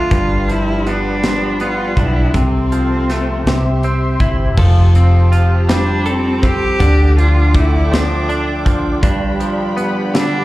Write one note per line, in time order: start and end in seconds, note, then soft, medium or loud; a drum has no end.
0.00 1.39 D3 medium
0.00 0.48 F3 soft
0.00 0.18 A3 medium
0.00 1.98 D4 medium
0.00 0.53 F4 loud
0.00 0.15 A4 soft
0.11 1.93 G1 medium
0.11 2.34 G2 medium
0.11 2.33 G4 medium
0.11 2.33 D5 medium
0.11 3.43 G5 medium
0.11 2.33 B5 medium
0.11 kick medium
0.11 closed hi-hat medium
0.49 1.23 F3 soft
0.49 0.89 E4 medium
0.49 closed hi-hat soft
0.87 1.60 B3 soft
0.87 1.64 D4 medium
0.87 closed hi-hat soft
1.23 2.42 F3 soft
1.23 snare medium
1.23 closed hi-hat medium
1.60 2.42 B3 medium
1.60 2.02 F4 medium
1.60 closed hi-hat soft
1.97 2.32 B1 medium
1.97 2.42 D4 soft
1.97 2.36 E4 medium
1.97 kick medium
1.97 closed hi-hat soft
2.31 3.42 C2 medium
2.31 3.46 C3 medium
2.31 3.44 A4 medium
2.31 4.53 C5 medium
2.31 3.44 C6 medium
2.31 kick medium
2.31 closed hi-hat medium
2.37 3.80 C4 medium
2.72 3.53 F3 soft
2.72 closed hi-hat soft
3.10 3.54 A3 soft
3.10 snare soft
3.10 closed hi-hat soft
3.44 4.16 C2 medium
3.44 4.58 C3 medium
3.44 4.55 G4 medium
3.44 4.55 E5 medium
3.44 4.56 C6 medium
3.44 snare loud
3.44 closed hi-hat medium
3.83 4.95 C4 medium
3.83 closed hi-hat soft
4.20 4.55 G1 medium
4.20 4.65 E4 medium
4.20 kick medium
4.20 closed hi-hat soft
4.55 6.76 F1 medium
4.55 6.79 F3 medium
4.55 6.77 G4 medium
4.55 6.05 A4 medium
4.55 6.77 C5 medium
4.55 10.45 G5 medium
4.55 6.77 A5 medium
4.55 kick medium
4.55 crash medium
4.95 6.41 C4 soft
4.95 closed hi-hat soft
5.32 6.80 F4 medium
5.32 closed hi-hat soft
5.69 6.87 G3 medium
5.69 6.10 D4 medium
5.69 snare loud
5.69 closed hi-hat medium
6.06 6.47 C4 medium
6.06 9.06 A4 medium
6.06 closed hi-hat soft
6.43 6.87 C4 medium
6.43 7.18 G4 loud
6.43 kick medium
6.43 closed hi-hat soft
6.77 9.02 D2 medium
6.77 10.14 D3 medium
6.77 8.29 D4 medium
6.77 8.99 A4 medium
6.77 10.45 D5 medium
6.77 8.99 D6 medium
6.77 kick loud
6.77 closed hi-hat medium
7.17 7.91 F3 medium
7.17 7.57 F4 medium
7.17 closed hi-hat medium
7.55 9.11 A3 medium
7.55 7.95 E4 medium
7.55 kick medium
7.55 closed hi-hat soft
7.92 8.65 F3 medium
7.92 8.76 D4 medium
7.92 snare loud
7.92 closed hi-hat medium
8.29 9.03 D4 medium
8.29 closed hi-hat soft
8.65 9.40 F3 medium
8.65 kick medium
8.65 closed hi-hat soft
9.02 10.45 G1 loud
9.02 10.45 G2 medium
9.02 10.45 D4 medium
9.02 10.45 G4 medium
9.02 10.45 B5 medium
9.02 kick loud
9.02 closed hi-hat medium
9.40 10.45 F3 medium
9.40 closed hi-hat soft
9.77 10.45 B3 medium
9.77 closed hi-hat soft
10.14 10.45 D3 medium
10.14 10.45 D4 medium
10.14 snare loud
10.14 closed hi-hat medium